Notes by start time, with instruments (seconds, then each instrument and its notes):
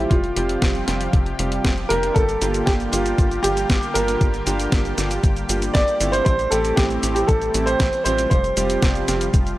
Already playing: analog polysynth G3 C4 F4 G4, grand piano E4, analog synth pad G4
0.09 analog synth bass F1, analog synth pad C3 F3 G3 F4, grand piano F4, kick, closed hi-hat
0.24 closed hi-hat
0.36 analog synth bass F1, analog polysynth G3 C4 F4 G4, closed hi-hat
0.49 closed hi-hat
0.62 analog synth bass F1, kick, snare, closed hi-hat
0.75 closed hi-hat
0.88 analog synth bass F1, analog polysynth G3 C4 F4 G4, snare, closed hi-hat
1.01 closed hi-hat
1.13 analog synth bass F1, kick, closed hi-hat
1.26 closed hi-hat
1.39 analog synth bass F1, analog polysynth G3 C4 F4 G4, closed hi-hat
1.52 closed hi-hat
1.65 analog synth bass F1, kick, snare, closed hi-hat
1.78 closed hi-hat
1.89 analog synth bass F1, analog polysynth A#3 D4 F4 G4, grand piano A#4, closed hi-hat
2.03 closed hi-hat
2.14 analog synth bass G1, analog synth pad D3 A#3, grand piano A4, kick, closed hi-hat, cabasa
2.29 closed hi-hat, cabasa
2.42 analog synth bass G1, analog polysynth A#3 D4 F4 G4, closed hi-hat, cabasa
2.54 closed hi-hat, cabasa
2.66 analog synth bass G1, grand piano G4, kick, snare, closed hi-hat, cabasa
2.80 closed hi-hat, cabasa
2.92 analog synth bass G1, analog polysynth A#3 D4 F4 G4, grand piano F4, closed hi-hat, cabasa
3.06 closed hi-hat, cabasa
3.18 analog synth bass G1, kick, closed hi-hat, cabasa
3.31 closed hi-hat, cabasa
3.43 analog synth bass G1, analog polysynth A#3 D4 F4 G4, grand piano G4, closed hi-hat, cabasa
3.57 closed hi-hat, cabasa
3.70 analog synth bass G1, kick, snare, closed hi-hat, cabasa
3.83 closed hi-hat, cabasa
3.94 analog synth bass G1, analog polysynth A#3 D4 F4 G4, grand piano A#4, closed hi-hat, cabasa
4.08 closed hi-hat, cabasa
4.21 analog synth bass G1, kick, closed hi-hat, cabasa
4.34 closed hi-hat, cabasa
4.47 analog synth bass G1, analog polysynth A#3 D4 F4 G4, closed hi-hat, cabasa
4.60 closed hi-hat, cabasa
4.72 analog synth bass G1, kick, snare, closed hi-hat, cabasa
4.85 closed hi-hat, cabasa
4.98 analog synth bass G1, analog polysynth A#3 D4 F4 G4, snare, closed hi-hat, cabasa
5.11 closed hi-hat, cabasa
5.24 analog synth bass G1, kick, closed hi-hat, cabasa
5.37 closed hi-hat, cabasa
5.49 analog synth bass G1, analog polysynth A#3 D4 F4 G4, closed hi-hat, cabasa
5.62 closed hi-hat, cabasa
5.74 analog synth bass G1, grand piano D5, kick, snare, closed hi-hat, cabasa
5.88 closed hi-hat, cabasa
6.01 analog synth bass G1, analog polysynth A3 C4 E4 G4, closed hi-hat, cabasa
6.12 grand piano C5, closed hi-hat, cabasa
6.25 analog synth bass A1, analog synth pad E3 A3 C4, grand piano C5, kick, closed hi-hat, cabasa
6.39 closed hi-hat, cabasa
6.50 analog synth bass A1, analog polysynth A3 C4 E4 G4, grand piano A4, closed hi-hat, cabasa
6.65 closed hi-hat, cabasa
6.76 analog synth bass A1, grand piano G4, kick, snare, closed hi-hat, cabasa
6.90 closed hi-hat, cabasa
7.03 analog synth bass A1, analog polysynth A3 C4 E4 G4, closed hi-hat, cabasa
7.14 grand piano G4, closed hi-hat, cabasa
7.27 analog synth bass A1, grand piano A4, kick, closed hi-hat, cabasa
7.42 closed hi-hat, cabasa
7.54 analog synth bass A1, analog polysynth A3 C4 E4 G4, closed hi-hat, cabasa
7.66 grand piano C5, closed hi-hat, cabasa
7.80 analog synth bass A1, kick, snare, closed hi-hat, cabasa
7.93 closed hi-hat, cabasa
8.04 analog synth bass A1, analog polysynth G3 C4 F4 G4, grand piano C5, closed hi-hat, cabasa
8.18 closed hi-hat, cabasa
8.30 analog synth bass F1, analog synth pad C3 F3 G3 F4, grand piano C5, kick, closed hi-hat, cabasa
8.44 closed hi-hat, cabasa
8.57 analog synth bass F1, analog polysynth G3 C4 F4 G4, closed hi-hat, cabasa
8.70 closed hi-hat, cabasa
8.82 analog synth bass F1, kick, snare, closed hi-hat, cabasa
8.95 closed hi-hat, cabasa
9.08 analog synth bass F1, analog polysynth G3 C4 F4 G4, snare, closed hi-hat, cabasa
9.21 closed hi-hat, cabasa
9.34 analog synth bass F1, kick, closed hi-hat, cabasa
9.47 closed hi-hat, cabasa